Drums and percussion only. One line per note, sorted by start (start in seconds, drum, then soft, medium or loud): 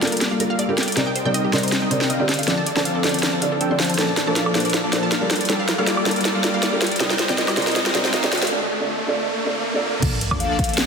0.02 snare medium
0.02 closed hi-hat soft
0.07 closed hi-hat medium
0.12 closed hi-hat soft
0.17 closed hi-hat medium
0.21 snare medium
0.21 closed hi-hat medium
0.40 closed hi-hat medium
0.59 closed hi-hat medium
0.78 snare medium
0.78 closed hi-hat soft
0.83 closed hi-hat medium
0.88 closed hi-hat soft
0.92 closed hi-hat medium
0.97 snare medium
0.97 closed hi-hat medium
1.16 closed hi-hat medium
1.34 closed hi-hat medium
1.53 snare medium
1.53 closed hi-hat soft
1.58 closed hi-hat medium
1.63 closed hi-hat soft
1.68 closed hi-hat medium
1.72 snare medium
1.72 closed hi-hat medium
1.91 closed hi-hat medium
2.01 snare medium
2.10 closed hi-hat medium
2.29 snare medium
2.29 closed hi-hat soft
2.34 closed hi-hat medium
2.39 closed hi-hat medium
2.43 closed hi-hat medium
2.48 snare medium
2.48 closed hi-hat medium
2.66 closed hi-hat medium
2.76 snare medium
2.85 closed hi-hat medium
3.04 snare medium
3.04 closed hi-hat soft
3.09 closed hi-hat medium
3.14 closed hi-hat soft
3.19 closed hi-hat medium
3.23 snare medium
3.23 closed hi-hat medium
3.42 closed hi-hat medium
3.61 closed hi-hat medium
3.80 snare medium
3.80 closed hi-hat soft
3.85 closed hi-hat medium
3.90 closed hi-hat soft
3.94 closed hi-hat medium
3.98 snare medium
3.98 closed hi-hat medium
4.17 snare medium
4.17 closed hi-hat medium
4.36 snare medium
4.36 closed hi-hat medium
4.46 high woodblock medium
4.55 snare medium
4.55 closed hi-hat soft
4.60 closed hi-hat medium
4.65 closed hi-hat soft
4.70 closed hi-hat medium
4.74 snare medium
4.74 closed hi-hat medium
4.93 snare medium
4.93 closed hi-hat medium
5.12 snare medium
5.12 closed hi-hat medium
5.31 snare medium
5.31 closed hi-hat soft
5.36 closed hi-hat medium
5.41 closed hi-hat soft
5.45 closed hi-hat medium
5.50 snare medium
5.50 closed hi-hat medium
5.69 snare medium
5.69 closed hi-hat medium
5.87 snare medium
5.87 closed hi-hat medium
5.97 high woodblock medium
6.06 snare medium
6.06 closed hi-hat soft
6.11 closed hi-hat medium
6.16 closed hi-hat soft
6.21 closed hi-hat medium
6.25 snare medium
6.25 closed hi-hat medium
6.44 snare medium
6.44 closed hi-hat medium
6.63 snare medium
6.63 closed hi-hat medium
6.82 snare medium
6.82 closed hi-hat soft
6.87 closed hi-hat medium
6.92 closed hi-hat soft
6.96 closed hi-hat medium
7.00 snare medium
7.00 closed hi-hat medium
7.10 snare medium
7.19 snare medium
7.19 closed hi-hat medium
7.29 snare medium
7.38 snare medium
7.38 closed hi-hat medium
7.48 snare medium
7.48 high woodblock medium
7.57 snare medium
7.57 closed hi-hat soft
7.62 closed hi-hat medium
7.67 snare medium
7.67 closed hi-hat soft
7.71 closed hi-hat medium
7.76 snare loud
7.76 closed hi-hat medium
7.86 snare medium
7.95 snare loud
7.95 closed hi-hat medium
8.05 snare medium
8.14 snare loud
8.14 closed hi-hat medium
8.24 snare medium
8.33 snare loud
8.33 closed hi-hat soft
8.38 closed hi-hat medium
8.42 snare loud
8.42 closed hi-hat soft
8.47 closed hi-hat medium
10.02 kick loud
10.02 closed hi-hat medium
10.02 crash loud
10.21 closed hi-hat medium
10.31 kick medium
10.31 high woodblock medium
10.40 closed hi-hat medium
10.59 kick loud
10.59 closed hi-hat medium
10.64 closed hi-hat medium
10.69 closed hi-hat medium
10.73 closed hi-hat medium
10.78 snare loud
10.78 closed hi-hat medium